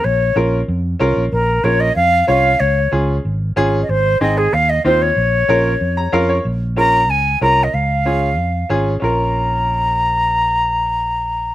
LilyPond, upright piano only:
\new Staff \with { instrumentName = "Upright piano" } { \time 4/4 \key bes \minor \tempo 4 = 187 r4 <des' f' bes'>8 r4. <des' f' bes'>8 r8 | r4 <des' f' bes'>8 r4. <des' f' des''>8 r8 | r4 <des' f' aes'>8 r4. <des' f' aes'>8 r8 | r4 <c' ees' aes'>8 r4. <c' ees' f'>8 r8 |
r4 <des' f' bes'>8 r4 bes''8 <des' f' bes' f''>8 des''8 | r4 <des' f' bes'>8 r4. <des' f' bes'>8 r8 | r4 <des' f' aes'>8 r4. <des' f' aes'>8 r8 | <des' f' bes'>1~ |
<des' f' bes'>1 | }